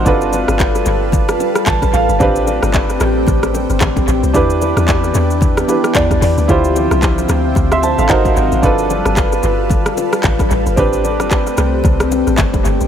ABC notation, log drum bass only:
X:1
M:4/4
L:1/16
Q:"Swing 16ths" 1/4=112
K:Gmix
V:1 name="Log drum bass" clef=bass
G,,,3 G,,,3 G,,,4 z2 A,,,2 A,,, G,,, | A,,,3 G,,,3 A,,,2 A,,,3 G,,, A,,,2 A,,, C,, | E,,3 E,,3 E,,4 z2 E,,2 E,, D,, | D,,3 C,,3 D,,2 D,,3 A,,, ^G,,,2 G,,, A,,, |
G,,,3 G,,,3 G,,,4 z2 A,,,2 A,,, G,,, | A,,,3 G,,,3 C,,2 C,,3 A,,, G,,,2 G,,, A,,, |]